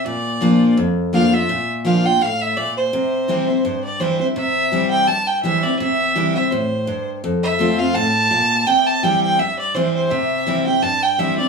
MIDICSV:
0, 0, Header, 1, 3, 480
1, 0, Start_track
1, 0, Tempo, 359066
1, 76, Time_signature, 4, 2, 24, 8
1, 15355, End_track
2, 0, Start_track
2, 0, Title_t, "Fiddle"
2, 0, Program_c, 0, 110
2, 82, Note_on_c, 0, 74, 94
2, 986, Note_off_c, 0, 74, 0
2, 1519, Note_on_c, 0, 77, 104
2, 1782, Note_on_c, 0, 76, 100
2, 1802, Note_off_c, 0, 77, 0
2, 2260, Note_off_c, 0, 76, 0
2, 2481, Note_on_c, 0, 77, 100
2, 2747, Note_on_c, 0, 79, 110
2, 2767, Note_off_c, 0, 77, 0
2, 2966, Note_on_c, 0, 77, 105
2, 2986, Note_off_c, 0, 79, 0
2, 3228, Note_on_c, 0, 76, 99
2, 3248, Note_off_c, 0, 77, 0
2, 3439, Note_on_c, 0, 74, 99
2, 3459, Note_off_c, 0, 76, 0
2, 3695, Note_off_c, 0, 74, 0
2, 3703, Note_on_c, 0, 72, 86
2, 5087, Note_off_c, 0, 72, 0
2, 5137, Note_on_c, 0, 74, 80
2, 5349, Note_on_c, 0, 72, 88
2, 5369, Note_off_c, 0, 74, 0
2, 5604, Note_off_c, 0, 72, 0
2, 5612, Note_on_c, 0, 72, 86
2, 5712, Note_off_c, 0, 72, 0
2, 5831, Note_on_c, 0, 76, 108
2, 6523, Note_off_c, 0, 76, 0
2, 6560, Note_on_c, 0, 79, 97
2, 6783, Note_on_c, 0, 81, 103
2, 6804, Note_off_c, 0, 79, 0
2, 7041, Note_on_c, 0, 79, 93
2, 7061, Note_off_c, 0, 81, 0
2, 7249, Note_off_c, 0, 79, 0
2, 7257, Note_on_c, 0, 76, 103
2, 7525, Note_on_c, 0, 74, 93
2, 7545, Note_off_c, 0, 76, 0
2, 7732, Note_off_c, 0, 74, 0
2, 7740, Note_on_c, 0, 76, 110
2, 8437, Note_off_c, 0, 76, 0
2, 8488, Note_on_c, 0, 76, 90
2, 8707, Note_on_c, 0, 72, 80
2, 8727, Note_off_c, 0, 76, 0
2, 9453, Note_off_c, 0, 72, 0
2, 9934, Note_on_c, 0, 76, 103
2, 10412, Note_on_c, 0, 77, 105
2, 10432, Note_off_c, 0, 76, 0
2, 10628, Note_on_c, 0, 81, 123
2, 10648, Note_off_c, 0, 77, 0
2, 11593, Note_on_c, 0, 79, 116
2, 11613, Note_off_c, 0, 81, 0
2, 11852, Note_on_c, 0, 81, 105
2, 11872, Note_off_c, 0, 79, 0
2, 12076, Note_on_c, 0, 79, 100
2, 12096, Note_off_c, 0, 81, 0
2, 12332, Note_off_c, 0, 79, 0
2, 12340, Note_on_c, 0, 79, 100
2, 12559, Note_on_c, 0, 76, 103
2, 12579, Note_off_c, 0, 79, 0
2, 12812, Note_off_c, 0, 76, 0
2, 12820, Note_on_c, 0, 74, 91
2, 13033, Note_on_c, 0, 72, 96
2, 13053, Note_off_c, 0, 74, 0
2, 13288, Note_off_c, 0, 72, 0
2, 13296, Note_on_c, 0, 72, 92
2, 13511, Note_on_c, 0, 76, 108
2, 13531, Note_off_c, 0, 72, 0
2, 14250, Note_off_c, 0, 76, 0
2, 14258, Note_on_c, 0, 79, 97
2, 14471, Note_on_c, 0, 81, 113
2, 14491, Note_off_c, 0, 79, 0
2, 14741, Note_on_c, 0, 79, 99
2, 14761, Note_off_c, 0, 81, 0
2, 14963, Note_on_c, 0, 76, 100
2, 14983, Note_off_c, 0, 79, 0
2, 15199, Note_off_c, 0, 76, 0
2, 15207, Note_on_c, 0, 74, 94
2, 15355, Note_off_c, 0, 74, 0
2, 15355, End_track
3, 0, Start_track
3, 0, Title_t, "Steel-string acoustic guitar"
3, 0, Program_c, 1, 25
3, 77, Note_on_c, 1, 46, 86
3, 544, Note_on_c, 1, 53, 93
3, 555, Note_on_c, 1, 58, 100
3, 560, Note_on_c, 1, 62, 99
3, 570, Note_on_c, 1, 65, 98
3, 993, Note_off_c, 1, 46, 0
3, 1008, Note_off_c, 1, 53, 0
3, 1014, Note_off_c, 1, 58, 0
3, 1017, Note_off_c, 1, 62, 0
3, 1021, Note_off_c, 1, 65, 0
3, 1035, Note_on_c, 1, 41, 96
3, 1507, Note_on_c, 1, 53, 86
3, 1518, Note_on_c, 1, 58, 83
3, 1524, Note_on_c, 1, 62, 98
3, 1534, Note_on_c, 1, 65, 91
3, 1755, Note_off_c, 1, 65, 0
3, 1763, Note_off_c, 1, 53, 0
3, 1768, Note_off_c, 1, 58, 0
3, 1771, Note_on_c, 1, 65, 55
3, 1772, Note_off_c, 1, 62, 0
3, 1798, Note_on_c, 1, 62, 46
3, 1952, Note_off_c, 1, 41, 0
3, 1984, Note_off_c, 1, 65, 0
3, 1995, Note_on_c, 1, 46, 93
3, 1998, Note_off_c, 1, 62, 0
3, 2467, Note_on_c, 1, 53, 96
3, 2476, Note_on_c, 1, 58, 90
3, 2486, Note_on_c, 1, 62, 97
3, 2493, Note_on_c, 1, 65, 100
3, 2712, Note_off_c, 1, 65, 0
3, 2723, Note_off_c, 1, 53, 0
3, 2728, Note_off_c, 1, 58, 0
3, 2728, Note_on_c, 1, 65, 52
3, 2733, Note_off_c, 1, 62, 0
3, 2752, Note_on_c, 1, 62, 51
3, 2912, Note_off_c, 1, 46, 0
3, 2943, Note_off_c, 1, 65, 0
3, 2955, Note_off_c, 1, 62, 0
3, 2957, Note_on_c, 1, 45, 90
3, 3415, Note_off_c, 1, 45, 0
3, 3433, Note_on_c, 1, 46, 82
3, 3893, Note_off_c, 1, 46, 0
3, 3918, Note_on_c, 1, 48, 95
3, 4386, Note_on_c, 1, 52, 80
3, 4395, Note_on_c, 1, 55, 84
3, 4403, Note_on_c, 1, 60, 99
3, 4412, Note_on_c, 1, 64, 103
3, 4635, Note_off_c, 1, 64, 0
3, 4643, Note_off_c, 1, 52, 0
3, 4647, Note_off_c, 1, 55, 0
3, 4651, Note_off_c, 1, 60, 0
3, 4652, Note_on_c, 1, 64, 57
3, 4677, Note_on_c, 1, 60, 47
3, 4834, Note_off_c, 1, 48, 0
3, 4865, Note_off_c, 1, 64, 0
3, 4876, Note_on_c, 1, 43, 90
3, 4877, Note_off_c, 1, 60, 0
3, 5344, Note_on_c, 1, 52, 89
3, 5354, Note_on_c, 1, 55, 95
3, 5361, Note_on_c, 1, 60, 98
3, 5370, Note_on_c, 1, 64, 89
3, 5589, Note_off_c, 1, 64, 0
3, 5602, Note_off_c, 1, 52, 0
3, 5605, Note_on_c, 1, 64, 55
3, 5607, Note_off_c, 1, 55, 0
3, 5610, Note_off_c, 1, 60, 0
3, 5633, Note_on_c, 1, 60, 49
3, 5793, Note_off_c, 1, 43, 0
3, 5822, Note_off_c, 1, 64, 0
3, 5827, Note_on_c, 1, 48, 89
3, 5836, Note_off_c, 1, 60, 0
3, 6304, Note_on_c, 1, 52, 90
3, 6315, Note_on_c, 1, 55, 97
3, 6321, Note_on_c, 1, 60, 96
3, 6330, Note_on_c, 1, 64, 97
3, 6748, Note_off_c, 1, 48, 0
3, 6768, Note_off_c, 1, 52, 0
3, 6774, Note_off_c, 1, 55, 0
3, 6777, Note_off_c, 1, 60, 0
3, 6782, Note_off_c, 1, 64, 0
3, 6795, Note_on_c, 1, 43, 89
3, 7266, Note_on_c, 1, 52, 88
3, 7278, Note_on_c, 1, 55, 88
3, 7285, Note_on_c, 1, 60, 88
3, 7291, Note_on_c, 1, 64, 102
3, 7516, Note_off_c, 1, 64, 0
3, 7522, Note_off_c, 1, 52, 0
3, 7528, Note_off_c, 1, 55, 0
3, 7532, Note_off_c, 1, 60, 0
3, 7532, Note_on_c, 1, 64, 65
3, 7558, Note_on_c, 1, 60, 45
3, 7712, Note_off_c, 1, 43, 0
3, 7745, Note_off_c, 1, 64, 0
3, 7758, Note_off_c, 1, 60, 0
3, 7758, Note_on_c, 1, 48, 93
3, 8227, Note_on_c, 1, 52, 98
3, 8235, Note_on_c, 1, 55, 91
3, 8245, Note_on_c, 1, 60, 92
3, 8255, Note_on_c, 1, 64, 109
3, 8475, Note_off_c, 1, 64, 0
3, 8483, Note_off_c, 1, 52, 0
3, 8487, Note_off_c, 1, 55, 0
3, 8491, Note_on_c, 1, 64, 67
3, 8492, Note_off_c, 1, 60, 0
3, 8517, Note_on_c, 1, 60, 46
3, 8674, Note_off_c, 1, 48, 0
3, 8705, Note_off_c, 1, 64, 0
3, 8717, Note_off_c, 1, 60, 0
3, 8718, Note_on_c, 1, 45, 86
3, 9176, Note_off_c, 1, 45, 0
3, 9188, Note_on_c, 1, 43, 89
3, 9650, Note_off_c, 1, 43, 0
3, 9674, Note_on_c, 1, 41, 99
3, 10145, Note_on_c, 1, 53, 97
3, 10156, Note_on_c, 1, 57, 84
3, 10163, Note_on_c, 1, 60, 104
3, 10170, Note_on_c, 1, 65, 104
3, 10388, Note_off_c, 1, 65, 0
3, 10402, Note_off_c, 1, 53, 0
3, 10404, Note_on_c, 1, 65, 61
3, 10407, Note_off_c, 1, 57, 0
3, 10411, Note_off_c, 1, 60, 0
3, 10430, Note_on_c, 1, 60, 51
3, 10592, Note_off_c, 1, 41, 0
3, 10621, Note_off_c, 1, 65, 0
3, 10628, Note_on_c, 1, 45, 91
3, 10634, Note_off_c, 1, 60, 0
3, 11091, Note_off_c, 1, 45, 0
3, 11106, Note_on_c, 1, 46, 93
3, 11570, Note_off_c, 1, 46, 0
3, 11592, Note_on_c, 1, 48, 93
3, 12071, Note_on_c, 1, 52, 87
3, 12082, Note_on_c, 1, 55, 94
3, 12090, Note_on_c, 1, 60, 97
3, 12095, Note_on_c, 1, 64, 103
3, 12511, Note_off_c, 1, 48, 0
3, 12532, Note_off_c, 1, 52, 0
3, 12537, Note_off_c, 1, 55, 0
3, 12541, Note_off_c, 1, 60, 0
3, 12544, Note_off_c, 1, 64, 0
3, 12559, Note_on_c, 1, 43, 96
3, 13027, Note_on_c, 1, 52, 91
3, 13041, Note_on_c, 1, 55, 93
3, 13049, Note_on_c, 1, 60, 97
3, 13052, Note_on_c, 1, 64, 106
3, 13474, Note_off_c, 1, 43, 0
3, 13490, Note_off_c, 1, 52, 0
3, 13497, Note_off_c, 1, 55, 0
3, 13501, Note_off_c, 1, 60, 0
3, 13503, Note_off_c, 1, 64, 0
3, 13517, Note_on_c, 1, 48, 101
3, 13990, Note_on_c, 1, 52, 99
3, 14001, Note_on_c, 1, 55, 99
3, 14007, Note_on_c, 1, 60, 94
3, 14015, Note_on_c, 1, 64, 95
3, 14235, Note_off_c, 1, 64, 0
3, 14244, Note_off_c, 1, 52, 0
3, 14250, Note_off_c, 1, 55, 0
3, 14251, Note_on_c, 1, 64, 61
3, 14253, Note_off_c, 1, 60, 0
3, 14275, Note_on_c, 1, 60, 55
3, 14433, Note_off_c, 1, 48, 0
3, 14464, Note_off_c, 1, 64, 0
3, 14471, Note_on_c, 1, 43, 97
3, 14476, Note_off_c, 1, 60, 0
3, 14948, Note_on_c, 1, 52, 82
3, 14958, Note_on_c, 1, 55, 96
3, 14967, Note_on_c, 1, 60, 104
3, 14974, Note_on_c, 1, 64, 98
3, 15194, Note_off_c, 1, 64, 0
3, 15203, Note_off_c, 1, 52, 0
3, 15208, Note_off_c, 1, 55, 0
3, 15210, Note_on_c, 1, 64, 59
3, 15213, Note_off_c, 1, 60, 0
3, 15237, Note_on_c, 1, 60, 45
3, 15355, Note_off_c, 1, 43, 0
3, 15355, Note_off_c, 1, 60, 0
3, 15355, Note_off_c, 1, 64, 0
3, 15355, End_track
0, 0, End_of_file